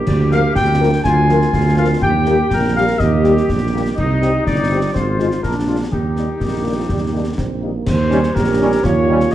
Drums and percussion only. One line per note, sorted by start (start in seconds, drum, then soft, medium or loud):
0.07 concert bass drum medium
0.07 crash soft
0.32 snare soft
0.55 concert bass drum medium
0.55 snare medium
1.04 concert bass drum medium
1.04 snare medium
1.29 snare soft
1.42 snare soft
1.53 concert bass drum medium
1.53 snare medium
2.02 concert bass drum medium
2.26 snare soft
2.51 concert bass drum medium
2.51 snare medium
3.00 concert bass drum medium
3.00 snare medium
3.24 snare soft
3.37 snare soft
3.49 concert bass drum medium
3.49 snare medium
3.98 concert bass drum medium
3.98 crash soft
4.22 snare soft
4.47 concert bass drum medium
4.47 snare medium
4.95 concert bass drum medium
4.95 snare medium
5.20 snare soft
5.31 snare soft
5.44 concert bass drum medium
5.44 snare medium
5.92 concert bass drum medium
6.17 snare soft
6.40 concert bass drum medium
6.40 snare medium
6.89 concert bass drum medium
6.89 snare medium
7.38 concert bass drum medium
7.38 snare medium
7.87 concert bass drum medium
7.87 snare medium
7.87 crash soft
8.11 snare soft
8.23 snare medium
8.36 concert bass drum medium
8.36 snare medium
8.84 concert bass drum medium
8.84 snare medium
9.20 snare medium